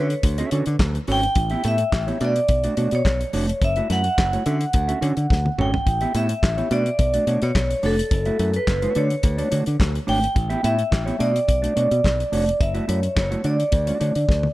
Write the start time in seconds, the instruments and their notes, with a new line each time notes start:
Already playing: fingered electric bass D3, vibraphone C#5
0.10 muted clean electric guitar stroke, closed hi-hat
0.23 fingered electric bass D2, muted clean electric guitar stroke, kick, closed hi-hat
0.38 clean electric guitar C#4 F#4 A4 E5, closed hi-hat
0.51 fingered electric bass D3, clean electric guitar C#4 F#4 A4 C#5, closed hi-hat
0.66 fingered electric bass D3, muted clean electric guitar stroke, closed hi-hat
0.79 fingered electric bass D2, muted clean electric guitar stroke, kick, snare, clap
0.95 muted clean electric guitar stroke, closed hi-hat
1.07 fingered electric bass G#1, clean electric guitar C#4 F#4 A4 C#5, open hi-hat
1.12 vibraphone G5
1.23 muted clean electric guitar stroke, closed hi-hat
1.35 fingered electric bass A1, muted clean electric guitar stroke, kick, closed hi-hat
1.50 clean electric guitar B3 E4 G4 E5, closed hi-hat
1.64 fingered electric bass A2, clean electric guitar B3 E4 G4 E5, closed hi-hat
1.68 vibraphone E5
1.78 muted clean electric guitar stroke, closed hi-hat
1.92 fingered electric bass A1, muted clean electric guitar stroke, kick, snare, clap
2.07 clean electric guitar B3 E4 G4 C#5, closed hi-hat
2.20 fingered electric bass B2, clean electric guitar A3 D4 F#4 D5, closed hi-hat
2.25 vibraphone D5
2.36 closed hi-hat
2.48 fingered electric bass B1, muted clean electric guitar stroke, kick, closed hi-hat
2.64 clean electric guitar A3 D4 F#4 D5, closed hi-hat
2.77 fingered electric bass B2, clean electric guitar A3 D4 F#4 C#5, closed hi-hat
2.91 fingered electric bass B2, vibraphone C#5, muted clean electric guitar stroke, closed hi-hat
3.05 fingered electric bass B1, muted clean electric guitar stroke, kick, snare, clap
3.20 muted clean electric guitar stroke, closed hi-hat
3.33 fingered electric bass F1, clean electric guitar A3 D4 F#4 C#5, open hi-hat
3.49 muted clean electric guitar stroke, closed hi-hat
3.62 fingered electric bass F#1, vibraphone E5, muted clean electric guitar stroke, kick, closed hi-hat
3.76 clean electric guitar A3 E4 F#4 E5, closed hi-hat
3.89 fingered electric bass F#2, clean electric guitar A3 E4 F#4 E5, vibraphone F#5, snare, closed hi-hat
4.04 muted clean electric guitar stroke, closed hi-hat
4.17 fingered electric bass F#1, muted clean electric guitar stroke, kick, snare, clap
4.33 clean electric guitar A3 E4 F#4 C#5, closed hi-hat
4.46 fingered electric bass D3, clean electric guitar C#4 F#4 A4 E5, closed hi-hat
4.61 muted clean electric guitar stroke, closed hi-hat
4.73 fingered electric bass D2, muted clean electric guitar stroke, kick, closed hi-hat
4.88 clean electric guitar C#4 F#4 A4 E5, closed hi-hat
5.01 fingered electric bass D3, clean electric guitar C#4 F#4 A4 C#5, closed hi-hat
5.17 fingered electric bass D3, closed hi-hat
5.30 fingered electric bass D2, muted clean electric guitar stroke, kick, snare
5.45 muted clean electric guitar stroke, high tom
5.58 fingered electric bass G#1, clean electric guitar C#4 F#4 A4 C#5, vibraphone G5, mid tom
5.73 muted clean electric guitar stroke, floor tom
5.86 fingered electric bass A1, muted clean electric guitar stroke, kick, closed hi-hat
6.01 clean electric guitar B3 E4 G4 E5, closed hi-hat
6.14 fingered electric bass A2, clean electric guitar B3 E4 G4 E5, vibraphone E5, closed hi-hat
6.29 muted clean electric guitar stroke, closed hi-hat
6.42 fingered electric bass A1, muted clean electric guitar stroke, kick, snare, clap
6.57 clean electric guitar B3 E4 G4 C#5, closed hi-hat
6.71 fingered electric bass B2, clean electric guitar A3 D4 F#4 D5, vibraphone D5, closed hi-hat
6.86 closed hi-hat
6.99 fingered electric bass B1, muted clean electric guitar stroke, kick, closed hi-hat
7.14 clean electric guitar A3 D4 F#4 D5, closed hi-hat
7.27 fingered electric bass B2, clean electric guitar A3 D4 F#4 C#5, closed hi-hat
7.42 fingered electric bass B2, vibraphone C#5, muted clean electric guitar stroke, closed hi-hat
7.55 fingered electric bass B1, muted clean electric guitar stroke, kick, snare, clap
7.70 muted clean electric guitar stroke, closed hi-hat
7.83 fingered electric bass F1, clean electric guitar A3 D4 F#4 C#5, vibraphone A4, open hi-hat
7.98 muted clean electric guitar stroke, closed hi-hat
8.11 fingered electric bass F#1, muted clean electric guitar stroke, kick, closed hi-hat
8.25 clean electric guitar A3 E4 F#4 E5, closed hi-hat
8.39 fingered electric bass F#2, clean electric guitar A3 E4 F#4 E5, closed hi-hat
8.54 vibraphone B4, muted clean electric guitar stroke, closed hi-hat
8.67 fingered electric bass F#1, kick, snare, clap
8.82 clean electric guitar A3 E4 F#4 C#5, closed hi-hat
8.95 fingered electric bass D3, clean electric guitar A3 D4 F#4 D5, vibraphone C#5, closed hi-hat
9.10 closed hi-hat
9.23 fingered electric bass D2, muted clean electric guitar stroke, kick, closed hi-hat
9.38 clean electric guitar A3 D4 F#4 D5, closed hi-hat
9.51 fingered electric bass D3, clean electric guitar A3 D4 F#4 C#5, closed hi-hat
9.66 fingered electric bass D3, muted clean electric guitar stroke, closed hi-hat
9.79 fingered electric bass D2, muted clean electric guitar stroke, kick, snare, clap
9.94 muted clean electric guitar stroke, closed hi-hat
10.07 fingered electric bass G#1, clean electric guitar A3 D4 F#4 C#5, vibraphone G5, open hi-hat
10.21 muted clean electric guitar stroke, closed hi-hat
10.35 fingered electric bass A1, muted clean electric guitar stroke, kick, closed hi-hat
10.50 clean electric guitar B3 E4 G4 E5, closed hi-hat
10.63 fingered electric bass A2, clean electric guitar B3 E4 G4 E5, vibraphone E5, closed hi-hat
10.78 muted clean electric guitar stroke, closed hi-hat
10.91 fingered electric bass A1, muted clean electric guitar stroke, kick, snare, clap
11.06 clean electric guitar B3 E4 G4 C#5, closed hi-hat
11.19 fingered electric bass B2, clean electric guitar A3 D4 F#4 D5, vibraphone D5, closed hi-hat
11.34 muted clean electric guitar stroke, closed hi-hat
11.48 fingered electric bass B1, vibraphone D5, muted clean electric guitar stroke, kick, closed hi-hat
11.62 clean electric guitar A3 D4 F#4 D5, closed hi-hat
11.76 fingered electric bass B2, clean electric guitar A3 D4 F#4 C#5, closed hi-hat
11.91 fingered electric bass B2, muted clean electric guitar stroke, closed hi-hat
12.04 fingered electric bass B1, muted clean electric guitar stroke, kick, snare, clap
12.19 muted clean electric guitar stroke, closed hi-hat
12.32 fingered electric bass F1, clean electric guitar A3 D4 F#4 C#5, open hi-hat
12.47 muted clean electric guitar stroke, closed hi-hat
12.60 fingered electric bass F#1, vibraphone E5, muted clean electric guitar stroke, kick, closed hi-hat
12.74 clean electric guitar A3 E4 F#4 E5, closed hi-hat
12.87 fingered electric bass F#2, clean electric guitar A3 E4 F#4 E5, vibraphone C#5, closed hi-hat
13.03 muted clean electric guitar stroke, closed hi-hat
13.15 fingered electric bass F#1, vibraphone C#5, muted clean electric guitar stroke, kick, snare, clap
13.30 clean electric guitar A3 E4 F#4 C#5, closed hi-hat
13.44 fingered electric bass D3, clean electric guitar A3 D4 F#4 D5, vibraphone D5, closed hi-hat
13.59 muted clean electric guitar stroke, closed hi-hat
13.71 fingered electric bass D2, muted clean electric guitar stroke, kick, closed hi-hat
13.87 clean electric guitar A3 D4 F#4 D5, closed hi-hat
14.00 fingered electric bass D3, clean electric guitar A3 D4 F#4 C#5, closed hi-hat
14.15 fingered electric bass D3, muted clean electric guitar stroke, closed hi-hat
14.28 fingered electric bass D2, muted clean electric guitar stroke, kick, snare
14.43 muted clean electric guitar stroke, high tom